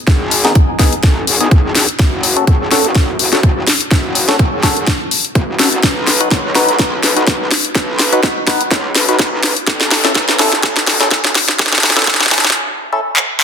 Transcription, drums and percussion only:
0.07 kick loud
0.07 snare medium
0.07 closed hi-hat medium
0.31 open hi-hat loud
0.45 snare soft
0.45 closed hi-hat medium
0.55 kick loud
0.55 closed hi-hat medium
0.79 kick medium
0.79 snare medium
0.79 open hi-hat loud
0.93 closed hi-hat medium
1.03 kick loud
1.03 snare medium
1.03 closed hi-hat medium
1.27 open hi-hat loud
1.41 closed hi-hat medium
1.51 kick loud
1.51 closed hi-hat medium
1.75 snare medium
1.75 open hi-hat loud
1.89 closed hi-hat medium
1.99 kick loud
1.99 snare medium
1.99 closed hi-hat medium
2.23 open hi-hat loud
2.37 closed hi-hat medium
2.47 kick loud
2.47 closed hi-hat soft
2.71 snare medium
2.71 open hi-hat loud
2.85 closed hi-hat medium
2.95 kick loud
2.95 snare medium
2.95 closed hi-hat medium
3.19 open hi-hat loud
3.33 snare soft
3.33 closed hi-hat medium
3.43 kick loud
3.43 closed hi-hat soft
3.67 snare medium
3.67 open hi-hat loud
3.81 closed hi-hat medium
3.91 kick loud
3.91 snare medium
3.91 closed hi-hat medium
4.15 open hi-hat loud
4.29 snare medium
4.29 closed hi-hat medium
4.39 kick loud
4.39 closed hi-hat soft
4.63 kick medium
4.63 snare medium
4.63 open hi-hat loud
4.77 closed hi-hat medium
4.87 kick loud
4.87 snare medium
4.87 closed hi-hat soft
5.11 open hi-hat loud
5.25 closed hi-hat medium
5.35 kick loud
5.35 closed hi-hat soft
5.59 snare medium
5.59 open hi-hat loud
5.72 closed hi-hat medium
5.83 kick loud
5.83 snare medium
5.83 closed hi-hat medium
6.07 snare medium
6.07 open hi-hat loud
6.21 closed hi-hat medium
6.31 kick loud
6.31 snare medium
6.31 closed hi-hat soft
6.55 snare medium
6.55 open hi-hat loud
6.68 closed hi-hat medium
6.79 kick loud
6.79 snare medium
6.79 closed hi-hat soft
7.03 snare medium
7.03 open hi-hat loud
7.17 closed hi-hat medium
7.27 kick loud
7.27 snare medium
7.27 closed hi-hat soft
7.51 snare medium
7.51 open hi-hat loud
7.65 closed hi-hat medium
7.75 kick loud
7.75 snare medium
7.75 closed hi-hat medium
7.99 snare medium
7.99 open hi-hat loud
8.13 closed hi-hat medium
8.23 kick loud
8.23 snare medium
8.23 closed hi-hat medium
8.47 kick medium
8.47 snare medium
8.47 open hi-hat loud
8.61 closed hi-hat medium
8.71 kick loud
8.71 snare medium
8.71 closed hi-hat medium
8.95 snare medium
8.95 open hi-hat loud
9.09 closed hi-hat medium
9.19 kick loud
9.19 snare medium
9.19 closed hi-hat soft
9.43 snare medium
9.43 open hi-hat loud
9.57 closed hi-hat medium
9.67 kick loud
9.67 snare medium
9.67 closed hi-hat medium
9.80 snare medium
9.91 snare medium
9.91 open hi-hat loud
10.05 snare medium
10.05 closed hi-hat medium
10.15 kick loud
10.15 snare medium
10.15 closed hi-hat medium
10.28 snare medium
10.39 snare medium
10.39 open hi-hat loud
10.52 snare medium
10.52 closed hi-hat medium
10.63 kick loud
10.63 snare medium
10.63 closed hi-hat medium
10.76 snare medium
10.87 snare medium
10.87 open hi-hat loud
11.00 snare medium
11.00 closed hi-hat medium
11.11 kick loud
11.11 snare medium
11.11 closed hi-hat medium
11.24 snare medium
11.35 snare loud
11.35 open hi-hat loud
11.48 snare medium
11.48 closed hi-hat medium
11.59 kick loud
11.59 snare loud
11.59 closed hi-hat medium
11.66 snare medium
11.72 snare medium
11.78 snare medium
11.83 snare loud
11.83 open hi-hat loud
11.90 snare medium
11.97 snare medium
11.97 closed hi-hat medium
12.02 snare medium
12.07 kick loud
12.07 snare loud
12.07 closed hi-hat medium
12.14 snare medium
12.20 snare medium
12.26 snare medium
12.31 kick medium
12.31 snare loud
12.31 open hi-hat loud
12.38 snare loud
12.45 snare loud
12.45 closed hi-hat medium
12.50 snare loud
13.16 clap medium

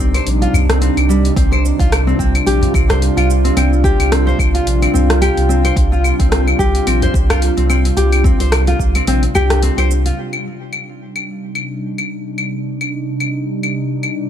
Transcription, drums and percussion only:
0.00 shaker medium
0.14 open hi-hat soft
0.14 claves medium
0.14 shaker soft
0.27 open hi-hat soft
0.27 shaker soft
0.42 open hi-hat soft
0.42 shaker soft
0.54 udu medium
0.54 claves medium
0.54 shaker medium
0.70 cross-stick medium
0.70 open hi-hat soft
0.70 shaker soft
0.82 open hi-hat medium
0.82 shaker soft
0.97 open hi-hat soft
0.97 claves medium
0.97 shaker soft
1.10 shaker medium
1.25 open hi-hat soft
1.25 shaker soft
1.36 kick loud
1.36 open hi-hat medium
1.36 shaker soft
1.53 claves medium
1.53 shaker soft
1.65 shaker medium
1.79 kick loud
1.79 open hi-hat soft
1.79 shaker soft
1.92 cross-stick medium
1.92 open hi-hat medium
1.92 claves medium
1.92 shaker soft
2.08 shaker soft
2.19 kick medium
2.19 shaker medium
2.35 open hi-hat soft
2.35 claves medium
2.35 shaker soft
2.47 open hi-hat soft
2.47 shaker soft
2.62 open hi-hat soft
2.62 udu medium
2.62 shaker soft
2.74 kick loud
2.74 claves medium
2.74 shaker medium
2.89 cross-stick medium
2.89 open hi-hat soft
2.89 udu medium
2.89 shaker soft
3.02 open hi-hat medium
3.02 shaker soft
3.18 open hi-hat soft
3.18 claves medium
3.18 shaker soft
3.30 shaker medium
3.45 open hi-hat soft
3.45 shaker soft
3.57 open hi-hat medium
3.57 claves medium
3.57 shaker soft
3.73 shaker soft
3.84 kick loud
3.84 shaker medium
4.00 open hi-hat soft
4.00 claves medium
4.00 shaker soft
4.12 cross-stick medium
4.12 open hi-hat medium
4.12 shaker soft
4.28 shaker soft
4.39 kick medium
4.39 claves medium
4.39 shaker medium
4.55 open hi-hat soft
4.55 shaker soft
4.67 open hi-hat medium
4.67 shaker soft
4.83 open hi-hat soft
4.83 claves medium
4.83 shaker soft
4.94 udu medium
4.94 shaker medium
5.10 cross-stick medium
5.10 open hi-hat soft
5.10 shaker soft
5.22 open hi-hat medium
5.22 claves medium
5.22 shaker soft
5.37 open hi-hat soft
5.37 shaker soft
5.50 shaker medium
5.65 open hi-hat soft
5.65 claves medium
5.65 shaker soft
5.76 kick loud
5.76 open hi-hat medium
5.76 shaker soft
5.93 shaker soft
6.04 claves medium
6.04 shaker medium
6.20 kick loud
6.20 open hi-hat soft
6.20 shaker soft
6.32 cross-stick medium
6.32 open hi-hat medium
6.32 shaker soft
6.48 claves medium
6.48 shaker soft
6.59 kick medium
6.59 shaker medium
6.75 open hi-hat soft
6.75 shaker soft
6.87 open hi-hat medium
6.87 claves medium
6.87 shaker soft
7.02 open hi-hat soft
7.02 udu medium
7.02 shaker soft
7.14 kick loud
7.14 shaker medium
7.30 cross-stick medium
7.30 open hi-hat soft
7.30 udu medium
7.30 claves medium
7.30 shaker soft
7.42 open hi-hat medium
7.42 shaker soft
7.58 open hi-hat soft
7.58 shaker soft
7.70 claves medium
7.70 shaker medium
7.85 open hi-hat soft
7.85 shaker soft
7.97 open hi-hat medium
7.97 shaker soft
8.13 open hi-hat soft
8.13 claves medium
8.13 shaker soft
8.24 kick loud
8.24 udu medium
8.24 shaker medium
8.40 open hi-hat soft
8.40 shaker soft
8.52 cross-stick medium
8.52 open hi-hat medium
8.52 claves medium
8.52 shaker soft
8.67 open hi-hat soft
8.67 shaker soft
8.79 kick medium
8.79 shaker medium
8.95 open hi-hat soft
8.95 claves medium
8.95 shaker soft
9.07 open hi-hat medium
9.07 shaker soft
9.23 open hi-hat soft
9.23 shaker soft
9.34 udu medium
9.34 claves medium
9.34 shaker medium
9.50 cross-stick medium
9.50 open hi-hat soft
9.50 shaker soft
9.63 open hi-hat medium
9.63 shaker soft
9.78 open hi-hat soft
9.78 claves medium
9.78 shaker soft
9.91 shaker medium
10.06 open hi-hat soft
10.06 shaker soft
10.33 claves medium
10.73 claves medium
11.16 claves medium
11.55 claves medium
11.98 claves medium
12.38 claves medium
12.81 claves medium
13.20 claves medium
13.63 claves medium
14.03 claves medium

